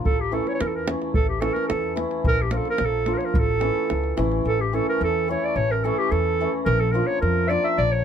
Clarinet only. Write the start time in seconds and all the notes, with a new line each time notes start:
0.05 A4
0.21 G4
0.33 A4
0.48 C#5
0.54 C#5
0.61 A#4
0.67 A4
0.76 A#4
1.15 A4
1.29 G4
1.40 A4
1.54 A#4
1.68 A4
2.28 A#4
2.42 G4
2.51 A#4
2.57 A4
2.70 A#4
2.85 A4
3.14 A#4 C#5
3.25 A#4
3.39 A4
4.47 A4
4.61 G4
4.74 A4
4.89 A#4
5.04 A4
5.31 C#5
5.45 D5
5.56 C#5
5.71 A#4
5.84 A4
5.98 G4
6.11 A4
6.65 A#4
6.80 A4
6.92 A#4
7.07 C#5
7.21 A#4
7.47 D5 E5
7.64 E5
7.78 D5
7.92 C#5